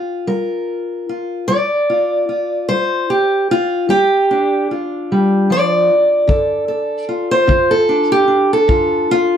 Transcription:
0.00 1.09 F4 soft
0.27 1.00 G3 medium
0.27 1.44 A#4 medium
1.09 1.52 F4 soft
1.48 2.21 G3 medium
1.48 2.68 D5 loud
1.90 2.28 F4 soft
2.29 3.10 F4 soft
2.69 3.41 G3 medium
2.69 3.09 C5 loud
3.10 3.49 G4 medium
3.51 3.90 F4 loud
3.89 4.61 G3 medium
3.89 4.69 G4 loud
4.31 7.08 D4 medium
4.71 6.28 F4 soft
5.12 5.50 G3 medium
5.50 5.89 F3 medium
5.50 7.31 D5 loud
6.27 7.00 D3 medium
6.27 6.68 A4 soft
6.27 kick medium
6.68 7.31 A4 soft
7.09 7.48 F4 soft
7.31 7.70 C5 loud
7.47 8.20 D3 medium
7.47 8.11 F4 medium
7.47 kick medium
7.71 8.10 A4 medium
7.89 8.27 D4 soft
8.12 8.50 G4 loud
8.28 9.37 D4 soft
8.53 9.11 A4 medium
8.68 9.37 D3 medium
8.68 9.09 F4 medium
8.68 kick medium
9.11 9.37 F4 loud

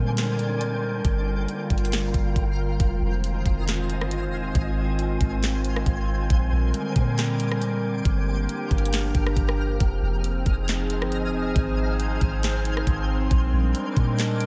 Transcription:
0.00 1.01 A#2 loud
0.00 1.03 D3 medium
0.00 1.03 G3 medium
0.00 1.01 G#3 medium
0.00 1.01 C4 medium
0.00 1.03 D4 medium
0.00 2.76 A#4 medium
0.00 1.01 C5 medium
0.00 2.76 G5 medium
0.00 1.03 G#5 medium
0.17 snare loud
0.17 closed hi-hat medium
0.39 closed hi-hat medium
0.61 closed hi-hat medium
1.04 1.47 G1 loud
1.04 2.78 D3 medium
1.04 2.78 G3 medium
1.04 2.78 A#3 medium
1.04 2.78 F4 medium
1.04 2.78 A#4 medium
1.04 kick loud
1.04 closed hi-hat medium
1.48 closed hi-hat medium
1.70 2.12 G1 loud
1.70 kick loud
1.70 closed hi-hat medium
1.78 closed hi-hat medium
1.85 closed hi-hat medium
1.92 snare loud
1.92 closed hi-hat medium
2.14 2.35 G1 loud
2.14 kick loud
2.14 closed hi-hat medium
2.36 2.78 G1 loud
2.36 kick loud
2.36 closed hi-hat medium
2.80 3.01 F1 loud
2.80 4.53 D#3 medium
2.80 8.01 G#3 medium
2.80 8.01 C4 medium
2.80 4.53 F4 medium
2.80 6.27 C5 medium
2.80 4.53 D#5 medium
2.80 8.01 G#5 medium
2.80 kick loud
2.80 closed hi-hat medium
3.02 3.44 F1 loud
3.24 closed hi-hat medium
3.46 4.02 F1 loud
3.46 kick medium
3.46 closed hi-hat medium
3.68 snare loud
3.68 closed hi-hat medium
3.90 closed hi-hat medium
4.00 4.29 G1 loud
4.00 cross-stick medium
4.11 closed hi-hat medium
4.27 4.54 F1 loud
4.55 5.18 G#1 loud
4.55 6.28 D#3 medium
4.55 6.28 F4 medium
4.55 6.29 F4 medium
4.55 8.02 C5 medium
4.55 kick loud
4.55 closed hi-hat medium
4.99 closed hi-hat medium
5.21 5.84 G#1 loud
5.21 kick loud
5.21 closed hi-hat medium
5.43 snare loud
5.43 closed hi-hat medium
5.65 closed hi-hat medium
5.76 cross-stick loud
5.86 6.28 G#1 loud
5.86 kick loud
5.86 closed hi-hat medium
6.30 6.51 A#1 loud
6.30 8.04 D3 medium
6.30 8.04 G3 medium
6.30 8.04 A#4 medium
6.30 9.77 G5 medium
6.30 8.04 D6 medium
6.30 kick loud
6.30 closed hi-hat medium
6.52 6.73 A#1 loud
6.74 closed hi-hat medium
6.96 8.01 A#2 loud
6.96 kick loud
6.96 closed hi-hat medium
7.18 snare loud
7.18 closed hi-hat medium
7.40 closed hi-hat medium
7.52 cross-stick loud
7.62 closed hi-hat medium
8.05 8.47 G1 loud
8.05 11.52 F3 medium
8.05 9.79 A#3 medium
8.05 9.79 D4 medium
8.05 9.79 G4 medium
8.05 9.79 A#4 medium
8.05 13.27 F6 medium
8.05 kick loud
8.05 closed hi-hat medium
8.49 closed hi-hat medium
8.71 9.13 G1 loud
8.71 kick loud
8.71 closed hi-hat medium
8.78 closed hi-hat medium
8.85 closed hi-hat medium
8.93 snare loud
8.93 closed hi-hat medium
9.15 9.36 G1 loud
9.15 kick loud
9.15 closed hi-hat medium
9.27 cross-stick loud
9.36 9.79 G1 loud
9.36 kick loud
9.36 closed hi-hat medium
9.49 cross-stick loud
9.80 10.02 F1 loud
9.80 11.54 C4 medium
9.80 13.27 D#4 medium
9.80 13.27 G#4 medium
9.80 13.27 C5 medium
9.80 11.54 D#5 medium
9.80 13.27 G#5 medium
9.80 kick loud
9.80 closed hi-hat medium
10.02 10.44 F1 loud
10.24 closed hi-hat medium
10.46 11.03 F1 loud
10.46 kick loud
10.46 closed hi-hat medium
10.68 snare loud
10.68 closed hi-hat medium
10.90 closed hi-hat medium
11.01 11.30 G1 loud
11.01 cross-stick loud
11.12 closed hi-hat medium
11.29 11.54 F1 loud
11.56 12.19 G#1 loud
11.56 13.29 F3 medium
11.56 14.46 C4 medium
11.56 14.46 C5 medium
11.56 kick loud
11.56 closed hi-hat medium
12.00 closed hi-hat medium
12.21 12.84 G#1 loud
12.21 kick loud
12.21 closed hi-hat medium
12.43 snare loud
12.43 closed hi-hat medium
12.65 closed hi-hat medium
12.77 cross-stick loud
12.87 13.29 G#1 loud
12.87 kick loud
12.87 closed hi-hat medium
13.31 13.52 A#1 loud
13.31 14.46 G3 medium
13.31 14.46 G#3 medium
13.31 14.46 D4 medium
13.31 14.46 A#4 medium
13.31 14.46 G5 medium
13.31 14.46 G#5 medium
13.31 14.46 D6 medium
13.31 kick loud
13.31 closed hi-hat medium
13.53 13.74 A#1 loud
13.75 closed hi-hat medium
13.97 14.46 A#2 loud
13.97 kick loud
13.97 closed hi-hat medium
14.19 snare loud
14.19 closed hi-hat medium
14.40 closed hi-hat medium

